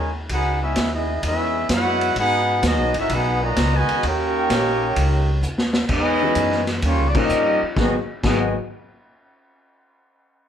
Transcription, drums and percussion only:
0, 0, Header, 1, 2, 480
1, 0, Start_track
1, 0, Key_signature, 5, "minor"
1, 0, Tempo, 467290
1, 309, Time_signature, 4, 2, 24, 8
1, 10771, End_track
2, 0, Start_track
2, 0, Title_t, "Drums"
2, 300, Note_on_c, 9, 51, 66
2, 305, Note_on_c, 9, 36, 25
2, 403, Note_off_c, 9, 51, 0
2, 408, Note_off_c, 9, 36, 0
2, 776, Note_on_c, 9, 44, 71
2, 776, Note_on_c, 9, 51, 73
2, 780, Note_on_c, 9, 38, 82
2, 783, Note_on_c, 9, 36, 31
2, 879, Note_off_c, 9, 44, 0
2, 879, Note_off_c, 9, 51, 0
2, 883, Note_off_c, 9, 38, 0
2, 886, Note_off_c, 9, 36, 0
2, 1260, Note_on_c, 9, 51, 76
2, 1263, Note_on_c, 9, 36, 26
2, 1363, Note_off_c, 9, 51, 0
2, 1365, Note_off_c, 9, 36, 0
2, 1737, Note_on_c, 9, 44, 56
2, 1737, Note_on_c, 9, 51, 79
2, 1741, Note_on_c, 9, 38, 86
2, 1742, Note_on_c, 9, 36, 20
2, 1840, Note_off_c, 9, 44, 0
2, 1840, Note_off_c, 9, 51, 0
2, 1844, Note_off_c, 9, 36, 0
2, 1844, Note_off_c, 9, 38, 0
2, 2065, Note_on_c, 9, 51, 59
2, 2168, Note_off_c, 9, 51, 0
2, 2217, Note_on_c, 9, 51, 70
2, 2220, Note_on_c, 9, 36, 23
2, 2320, Note_off_c, 9, 51, 0
2, 2323, Note_off_c, 9, 36, 0
2, 2698, Note_on_c, 9, 44, 62
2, 2698, Note_on_c, 9, 51, 79
2, 2701, Note_on_c, 9, 36, 24
2, 2702, Note_on_c, 9, 38, 82
2, 2801, Note_off_c, 9, 44, 0
2, 2801, Note_off_c, 9, 51, 0
2, 2804, Note_off_c, 9, 36, 0
2, 2805, Note_off_c, 9, 38, 0
2, 3021, Note_on_c, 9, 51, 58
2, 3124, Note_off_c, 9, 51, 0
2, 3179, Note_on_c, 9, 51, 72
2, 3183, Note_on_c, 9, 36, 25
2, 3281, Note_off_c, 9, 51, 0
2, 3286, Note_off_c, 9, 36, 0
2, 3661, Note_on_c, 9, 44, 58
2, 3661, Note_on_c, 9, 51, 85
2, 3664, Note_on_c, 9, 36, 30
2, 3665, Note_on_c, 9, 38, 84
2, 3764, Note_off_c, 9, 44, 0
2, 3764, Note_off_c, 9, 51, 0
2, 3767, Note_off_c, 9, 36, 0
2, 3768, Note_off_c, 9, 38, 0
2, 3991, Note_on_c, 9, 51, 56
2, 4094, Note_off_c, 9, 51, 0
2, 4141, Note_on_c, 9, 51, 72
2, 4145, Note_on_c, 9, 36, 28
2, 4244, Note_off_c, 9, 51, 0
2, 4247, Note_off_c, 9, 36, 0
2, 4622, Note_on_c, 9, 44, 61
2, 4622, Note_on_c, 9, 51, 79
2, 4624, Note_on_c, 9, 36, 26
2, 4626, Note_on_c, 9, 38, 80
2, 4725, Note_off_c, 9, 44, 0
2, 4725, Note_off_c, 9, 51, 0
2, 4726, Note_off_c, 9, 36, 0
2, 4729, Note_off_c, 9, 38, 0
2, 5097, Note_on_c, 9, 51, 80
2, 5100, Note_on_c, 9, 36, 25
2, 5199, Note_off_c, 9, 51, 0
2, 5203, Note_off_c, 9, 36, 0
2, 5573, Note_on_c, 9, 44, 59
2, 5675, Note_off_c, 9, 44, 0
2, 5732, Note_on_c, 9, 38, 85
2, 5835, Note_off_c, 9, 38, 0
2, 5889, Note_on_c, 9, 38, 110
2, 5992, Note_off_c, 9, 38, 0
2, 6046, Note_on_c, 9, 49, 82
2, 6052, Note_on_c, 9, 36, 70
2, 6149, Note_off_c, 9, 49, 0
2, 6155, Note_off_c, 9, 36, 0
2, 6523, Note_on_c, 9, 44, 62
2, 6523, Note_on_c, 9, 51, 75
2, 6533, Note_on_c, 9, 36, 25
2, 6626, Note_off_c, 9, 44, 0
2, 6626, Note_off_c, 9, 51, 0
2, 6636, Note_off_c, 9, 36, 0
2, 6691, Note_on_c, 9, 38, 34
2, 6793, Note_off_c, 9, 38, 0
2, 6849, Note_on_c, 9, 38, 50
2, 6853, Note_on_c, 9, 51, 54
2, 6951, Note_off_c, 9, 38, 0
2, 6955, Note_off_c, 9, 51, 0
2, 7007, Note_on_c, 9, 51, 76
2, 7013, Note_on_c, 9, 36, 23
2, 7110, Note_off_c, 9, 51, 0
2, 7116, Note_off_c, 9, 36, 0
2, 7341, Note_on_c, 9, 49, 87
2, 7342, Note_on_c, 9, 36, 98
2, 7444, Note_off_c, 9, 49, 0
2, 7445, Note_off_c, 9, 36, 0
2, 7490, Note_on_c, 9, 44, 69
2, 7592, Note_off_c, 9, 44, 0
2, 7977, Note_on_c, 9, 36, 91
2, 7977, Note_on_c, 9, 38, 79
2, 8079, Note_off_c, 9, 36, 0
2, 8080, Note_off_c, 9, 38, 0
2, 8460, Note_on_c, 9, 36, 87
2, 8462, Note_on_c, 9, 38, 88
2, 8462, Note_on_c, 9, 49, 80
2, 8562, Note_off_c, 9, 36, 0
2, 8564, Note_off_c, 9, 38, 0
2, 8564, Note_off_c, 9, 49, 0
2, 10771, End_track
0, 0, End_of_file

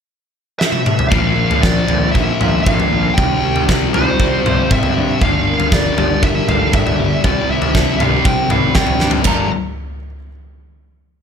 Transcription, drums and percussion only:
0, 0, Header, 1, 2, 480
1, 0, Start_track
1, 0, Tempo, 513699
1, 1047, Time_signature, 4, 2, 24, 8
1, 4882, Tempo, 503778
1, 10596, End_track
2, 0, Start_track
2, 0, Title_t, "Drums"
2, 570, Note_on_c, 9, 38, 66
2, 664, Note_off_c, 9, 38, 0
2, 676, Note_on_c, 9, 48, 62
2, 769, Note_off_c, 9, 48, 0
2, 805, Note_on_c, 9, 47, 82
2, 899, Note_off_c, 9, 47, 0
2, 924, Note_on_c, 9, 43, 82
2, 1017, Note_off_c, 9, 43, 0
2, 1043, Note_on_c, 9, 43, 68
2, 1044, Note_on_c, 9, 36, 100
2, 1136, Note_off_c, 9, 43, 0
2, 1137, Note_off_c, 9, 36, 0
2, 1409, Note_on_c, 9, 43, 75
2, 1502, Note_off_c, 9, 43, 0
2, 1526, Note_on_c, 9, 38, 73
2, 1527, Note_on_c, 9, 36, 93
2, 1619, Note_off_c, 9, 38, 0
2, 1621, Note_off_c, 9, 36, 0
2, 1761, Note_on_c, 9, 43, 82
2, 1854, Note_off_c, 9, 43, 0
2, 2009, Note_on_c, 9, 36, 88
2, 2103, Note_off_c, 9, 36, 0
2, 2250, Note_on_c, 9, 43, 75
2, 2250, Note_on_c, 9, 47, 70
2, 2343, Note_off_c, 9, 43, 0
2, 2343, Note_off_c, 9, 47, 0
2, 2490, Note_on_c, 9, 36, 109
2, 2496, Note_on_c, 9, 47, 75
2, 2584, Note_off_c, 9, 36, 0
2, 2589, Note_off_c, 9, 47, 0
2, 2613, Note_on_c, 9, 43, 69
2, 2707, Note_off_c, 9, 43, 0
2, 2969, Note_on_c, 9, 43, 80
2, 2970, Note_on_c, 9, 36, 97
2, 3063, Note_off_c, 9, 36, 0
2, 3063, Note_off_c, 9, 43, 0
2, 3324, Note_on_c, 9, 43, 70
2, 3417, Note_off_c, 9, 43, 0
2, 3446, Note_on_c, 9, 36, 105
2, 3450, Note_on_c, 9, 38, 81
2, 3540, Note_off_c, 9, 36, 0
2, 3543, Note_off_c, 9, 38, 0
2, 3684, Note_on_c, 9, 43, 86
2, 3778, Note_off_c, 9, 43, 0
2, 3921, Note_on_c, 9, 36, 92
2, 4015, Note_off_c, 9, 36, 0
2, 4167, Note_on_c, 9, 43, 74
2, 4167, Note_on_c, 9, 47, 78
2, 4261, Note_off_c, 9, 43, 0
2, 4261, Note_off_c, 9, 47, 0
2, 4400, Note_on_c, 9, 36, 110
2, 4401, Note_on_c, 9, 47, 86
2, 4493, Note_off_c, 9, 36, 0
2, 4494, Note_off_c, 9, 47, 0
2, 4512, Note_on_c, 9, 43, 76
2, 4605, Note_off_c, 9, 43, 0
2, 4873, Note_on_c, 9, 36, 96
2, 4875, Note_on_c, 9, 43, 65
2, 4968, Note_off_c, 9, 36, 0
2, 4970, Note_off_c, 9, 43, 0
2, 5236, Note_on_c, 9, 43, 74
2, 5332, Note_off_c, 9, 43, 0
2, 5354, Note_on_c, 9, 36, 105
2, 5359, Note_on_c, 9, 38, 79
2, 5450, Note_off_c, 9, 36, 0
2, 5454, Note_off_c, 9, 38, 0
2, 5600, Note_on_c, 9, 43, 89
2, 5696, Note_off_c, 9, 43, 0
2, 5838, Note_on_c, 9, 36, 101
2, 5934, Note_off_c, 9, 36, 0
2, 6084, Note_on_c, 9, 43, 76
2, 6084, Note_on_c, 9, 47, 70
2, 6179, Note_off_c, 9, 43, 0
2, 6179, Note_off_c, 9, 47, 0
2, 6319, Note_on_c, 9, 47, 84
2, 6321, Note_on_c, 9, 36, 119
2, 6414, Note_off_c, 9, 47, 0
2, 6416, Note_off_c, 9, 36, 0
2, 6446, Note_on_c, 9, 43, 70
2, 6541, Note_off_c, 9, 43, 0
2, 6802, Note_on_c, 9, 43, 83
2, 6805, Note_on_c, 9, 36, 96
2, 6898, Note_off_c, 9, 43, 0
2, 6901, Note_off_c, 9, 36, 0
2, 7162, Note_on_c, 9, 43, 77
2, 7258, Note_off_c, 9, 43, 0
2, 7286, Note_on_c, 9, 36, 112
2, 7292, Note_on_c, 9, 38, 74
2, 7381, Note_off_c, 9, 36, 0
2, 7387, Note_off_c, 9, 38, 0
2, 7528, Note_on_c, 9, 43, 84
2, 7528, Note_on_c, 9, 47, 74
2, 7624, Note_off_c, 9, 43, 0
2, 7624, Note_off_c, 9, 47, 0
2, 7766, Note_on_c, 9, 36, 114
2, 7862, Note_off_c, 9, 36, 0
2, 8004, Note_on_c, 9, 43, 86
2, 8004, Note_on_c, 9, 47, 80
2, 8099, Note_off_c, 9, 43, 0
2, 8099, Note_off_c, 9, 47, 0
2, 8238, Note_on_c, 9, 38, 86
2, 8244, Note_on_c, 9, 36, 112
2, 8334, Note_off_c, 9, 38, 0
2, 8339, Note_off_c, 9, 36, 0
2, 8352, Note_on_c, 9, 43, 67
2, 8447, Note_off_c, 9, 43, 0
2, 8479, Note_on_c, 9, 38, 58
2, 8574, Note_off_c, 9, 38, 0
2, 8585, Note_on_c, 9, 43, 93
2, 8680, Note_off_c, 9, 43, 0
2, 8709, Note_on_c, 9, 49, 71
2, 8720, Note_on_c, 9, 36, 102
2, 8804, Note_off_c, 9, 49, 0
2, 8815, Note_off_c, 9, 36, 0
2, 10596, End_track
0, 0, End_of_file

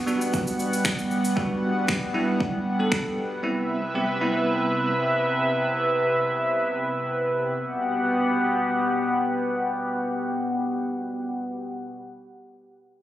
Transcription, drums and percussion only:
0, 0, Header, 1, 2, 480
1, 0, Start_track
1, 0, Key_signature, 1, "major"
1, 0, Tempo, 517241
1, 1269, Time_signature, 4, 2, 24, 8
1, 12085, End_track
2, 0, Start_track
2, 0, Title_t, "Drums"
2, 71, Note_on_c, 9, 82, 54
2, 163, Note_off_c, 9, 82, 0
2, 198, Note_on_c, 9, 42, 66
2, 198, Note_on_c, 9, 82, 64
2, 291, Note_off_c, 9, 42, 0
2, 291, Note_off_c, 9, 82, 0
2, 308, Note_on_c, 9, 82, 75
2, 312, Note_on_c, 9, 36, 113
2, 401, Note_off_c, 9, 82, 0
2, 405, Note_off_c, 9, 36, 0
2, 439, Note_on_c, 9, 42, 56
2, 439, Note_on_c, 9, 82, 55
2, 532, Note_off_c, 9, 42, 0
2, 532, Note_off_c, 9, 82, 0
2, 552, Note_on_c, 9, 82, 53
2, 645, Note_off_c, 9, 82, 0
2, 680, Note_on_c, 9, 42, 70
2, 680, Note_on_c, 9, 82, 66
2, 773, Note_off_c, 9, 42, 0
2, 773, Note_off_c, 9, 82, 0
2, 787, Note_on_c, 9, 26, 112
2, 788, Note_on_c, 9, 36, 118
2, 788, Note_on_c, 9, 82, 75
2, 880, Note_off_c, 9, 26, 0
2, 880, Note_off_c, 9, 36, 0
2, 881, Note_off_c, 9, 82, 0
2, 917, Note_on_c, 9, 42, 43
2, 917, Note_on_c, 9, 82, 48
2, 1010, Note_off_c, 9, 42, 0
2, 1010, Note_off_c, 9, 82, 0
2, 1029, Note_on_c, 9, 82, 55
2, 1122, Note_off_c, 9, 82, 0
2, 1157, Note_on_c, 9, 42, 79
2, 1157, Note_on_c, 9, 82, 79
2, 1250, Note_off_c, 9, 42, 0
2, 1250, Note_off_c, 9, 82, 0
2, 1269, Note_on_c, 9, 36, 113
2, 1362, Note_off_c, 9, 36, 0
2, 1749, Note_on_c, 9, 26, 109
2, 1750, Note_on_c, 9, 36, 112
2, 1841, Note_off_c, 9, 26, 0
2, 1843, Note_off_c, 9, 36, 0
2, 2231, Note_on_c, 9, 36, 110
2, 2324, Note_off_c, 9, 36, 0
2, 2707, Note_on_c, 9, 26, 104
2, 2707, Note_on_c, 9, 36, 118
2, 2800, Note_off_c, 9, 26, 0
2, 2800, Note_off_c, 9, 36, 0
2, 12085, End_track
0, 0, End_of_file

